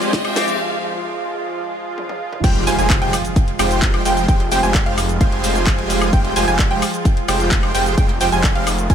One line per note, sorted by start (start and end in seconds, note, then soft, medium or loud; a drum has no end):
0.00 2.40 F3 medium
0.00 0.33 G#3 medium
0.00 2.40 G#3 medium
0.00 0.22 G#3 medium
0.00 0.33 C4 medium
0.00 0.34 F4 medium
0.00 2.40 F4 medium
0.00 0.22 F4 medium
0.00 0.34 G4 medium
0.00 0.22 G4 medium
0.00 0.22 C5 medium
0.00 0.22 G#5 medium
0.00 closed hi-hat soft
0.00 riser medium
0.00 cabasa soft
0.13 kick loud
0.13 snare medium
0.13 closed hi-hat medium
0.13 cabasa soft
0.25 0.38 G#3 medium
0.25 0.38 F4 medium
0.25 0.38 G4 medium
0.25 0.38 C5 medium
0.25 0.38 G5 loud
0.25 closed hi-hat soft
0.25 high woodblock medium
0.35 0.57 G#3 medium
0.35 0.57 C4 medium
0.35 0.57 F4 medium
0.35 0.58 G4 medium
0.35 snare medium
0.35 open hi-hat loud
0.35 cabasa medium
0.48 closed hi-hat soft
0.48 cabasa soft
1.98 high tom medium
2.09 high tom medium
2.32 mid tom medium
2.44 2.65 F1 loud
2.44 8.95 F3 medium
2.44 2.64 G#3 medium
2.44 8.95 G#3 medium
2.44 2.64 F4 medium
2.44 8.95 F4 medium
2.44 2.64 G4 medium
2.44 2.64 C5 medium
2.44 2.64 G5 medium
2.44 2.64 G5 loud
2.44 kick loud
2.44 closed hi-hat medium
2.44 crash loud
2.44 impact medium
2.44 cabasa soft
2.56 closed hi-hat soft
2.67 2.76 F1 medium
2.67 2.77 G#3 medium
2.67 2.77 F4 medium
2.67 2.77 G4 medium
2.67 2.77 C5 medium
2.67 2.77 G#5 loud
2.67 open hi-hat loud
2.67 cabasa medium
2.78 2.99 F1 loud
2.78 2.99 G#3 medium
2.78 2.99 F4 medium
2.78 2.99 G4 medium
2.78 2.99 C5 medium
2.78 2.99 G#5 medium
2.78 closed hi-hat soft
2.78 cabasa soft
2.90 kick loud
2.90 clap loud
2.90 closed hi-hat medium
2.90 cabasa soft
3.01 3.12 F1 loud
3.01 3.14 G#3 medium
3.01 3.14 F4 medium
3.01 3.14 G4 medium
3.01 3.14 C5 medium
3.01 3.14 G5 loud
3.01 closed hi-hat soft
3.13 open hi-hat loud
3.13 cabasa medium
3.13 high woodblock medium
3.25 closed hi-hat soft
3.25 cabasa soft
3.36 kick loud
3.36 closed hi-hat medium
3.36 cabasa soft
3.48 closed hi-hat soft
3.59 4.03 F1 loud
3.59 4.03 G#3 medium
3.59 4.03 F4 medium
3.59 4.03 G4 medium
3.59 4.03 C5 medium
3.59 4.03 G5 medium
3.59 open hi-hat loud
3.59 cabasa medium
3.59 high woodblock medium
3.71 closed hi-hat soft
3.71 cabasa soft
3.82 kick loud
3.82 clap loud
3.82 closed hi-hat medium
3.82 cabasa soft
3.94 closed hi-hat soft
3.94 high woodblock medium
4.05 4.26 F1 medium
4.05 4.26 G#3 medium
4.05 4.26 F4 medium
4.05 4.26 G4 medium
4.05 4.26 C5 medium
4.05 4.26 G5 loud
4.05 open hi-hat loud
4.05 cabasa medium
4.17 closed hi-hat soft
4.17 cabasa soft
4.28 4.49 F1 loud
4.28 4.41 G#3 medium
4.28 4.41 F4 medium
4.28 4.41 G4 medium
4.28 4.41 C5 medium
4.28 4.41 G5 loud
4.28 kick loud
4.28 closed hi-hat medium
4.28 cabasa soft
4.40 closed hi-hat soft
4.51 4.61 F1 medium
4.51 4.60 G#3 loud
4.51 4.60 F4 medium
4.51 4.60 G4 medium
4.51 4.60 C5 medium
4.51 4.60 G5 loud
4.51 open hi-hat loud
4.51 cabasa medium
4.63 4.84 F1 loud
4.63 4.83 G#3 medium
4.63 4.83 F4 medium
4.63 4.83 G4 medium
4.63 4.83 C5 medium
4.63 4.83 G#5 loud
4.63 4.83 G#5 medium
4.63 closed hi-hat soft
4.63 cabasa soft
4.75 kick loud
4.75 clap loud
4.75 closed hi-hat medium
4.75 cabasa soft
4.86 5.18 F1 medium
4.86 4.99 G#3 medium
4.86 4.99 F4 medium
4.86 4.99 G4 medium
4.86 4.99 C5 medium
4.86 4.99 F5 medium
4.86 closed hi-hat soft
4.98 open hi-hat loud
4.98 cabasa medium
4.98 high woodblock medium
5.09 closed hi-hat soft
5.09 cabasa soft
5.21 6.11 F1 loud
5.21 6.10 G#3 medium
5.21 6.10 F4 medium
5.21 6.10 G4 medium
5.21 6.10 C5 medium
5.21 6.10 F5 medium
5.21 6.10 G#5 medium
5.21 kick loud
5.21 closed hi-hat medium
5.21 cabasa soft
5.32 closed hi-hat soft
5.44 open hi-hat loud
5.44 cabasa medium
5.55 closed hi-hat soft
5.55 cabasa soft
5.67 kick loud
5.67 clap loud
5.67 closed hi-hat medium
5.67 cabasa soft
5.78 closed hi-hat soft
5.90 open hi-hat loud
5.90 cabasa medium
6.02 closed hi-hat soft
6.02 cabasa soft
6.02 high woodblock medium
6.13 6.34 F1 loud
6.13 6.33 G#3 medium
6.13 6.33 F4 medium
6.13 6.33 G4 medium
6.13 6.33 C5 medium
6.13 6.33 G5 loud
6.13 kick loud
6.13 closed hi-hat medium
6.13 cabasa soft
6.25 closed hi-hat soft
6.36 6.45 F1 loud
6.36 6.46 G#3 loud
6.36 6.46 F4 medium
6.36 6.46 G4 medium
6.36 6.46 C5 medium
6.36 6.46 G#5 loud
6.36 open hi-hat loud
6.36 cabasa medium
6.48 6.68 F1 loud
6.48 6.68 G#3 medium
6.48 6.68 F4 medium
6.48 6.68 G4 medium
6.48 6.68 C5 medium
6.48 6.68 G#5 medium
6.48 closed hi-hat soft
6.48 cabasa soft
6.59 kick loud
6.59 clap loud
6.59 closed hi-hat medium
6.59 cabasa soft
6.71 6.81 F1 loud
6.71 6.84 G#3 medium
6.71 6.84 F4 medium
6.71 6.84 G4 medium
6.71 6.84 C5 medium
6.71 6.84 G5 loud
6.71 closed hi-hat soft
6.82 open hi-hat loud
6.82 cabasa medium
6.82 high woodblock medium
6.94 closed hi-hat soft
6.94 cabasa soft
7.05 kick loud
7.05 closed hi-hat medium
7.05 cabasa soft
7.17 closed hi-hat soft
7.28 7.72 F1 loud
7.28 7.72 G#3 medium
7.28 7.72 F4 medium
7.28 7.72 G4 medium
7.28 7.72 C5 medium
7.28 7.72 G5 medium
7.28 open hi-hat loud
7.28 cabasa medium
7.28 high woodblock medium
7.40 closed hi-hat soft
7.40 cabasa soft
7.51 kick loud
7.51 clap loud
7.51 closed hi-hat medium
7.51 cabasa soft
7.63 closed hi-hat soft
7.63 high woodblock medium
7.74 7.95 F1 medium
7.74 7.95 G#3 loud
7.74 7.95 F4 medium
7.74 7.95 G4 medium
7.74 7.95 C5 medium
7.74 7.95 G5 loud
7.74 open hi-hat loud
7.74 cabasa medium
7.86 closed hi-hat soft
7.86 cabasa soft
7.98 8.18 F1 loud
7.98 8.11 G#3 medium
7.98 8.11 F4 medium
7.98 8.11 G4 medium
7.98 8.11 C5 medium
7.98 8.11 G5 loud
7.98 kick loud
7.98 closed hi-hat medium
7.98 cabasa soft
8.09 closed hi-hat soft
8.21 8.30 F1 medium
8.21 8.29 G#3 loud
8.21 8.29 F4 medium
8.21 8.29 G4 medium
8.21 8.29 C5 medium
8.21 8.29 G5 loud
8.21 open hi-hat loud
8.21 cabasa medium
8.32 8.53 F1 medium
8.32 8.53 G#3 medium
8.32 8.53 F4 medium
8.32 8.52 G4 medium
8.32 8.52 C5 medium
8.32 8.53 G#5 medium
8.32 closed hi-hat soft
8.32 cabasa soft
8.44 kick loud
8.44 clap loud
8.44 closed hi-hat medium
8.44 cabasa soft
8.55 8.88 F1 loud
8.55 8.68 G#3 medium
8.55 8.68 F4 medium
8.55 8.68 G4 medium
8.55 8.68 C5 medium
8.55 8.68 F5 medium
8.55 closed hi-hat soft
8.67 open hi-hat loud
8.67 cabasa medium
8.67 high woodblock medium
8.78 closed hi-hat soft
8.78 cabasa soft
8.90 8.95 F1 loud
8.90 8.95 G#3 medium
8.90 8.95 F4 medium
8.90 8.95 G4 medium
8.90 8.95 C5 medium
8.90 8.95 G#5 medium
8.90 kick loud
8.90 closed hi-hat medium
8.90 cabasa soft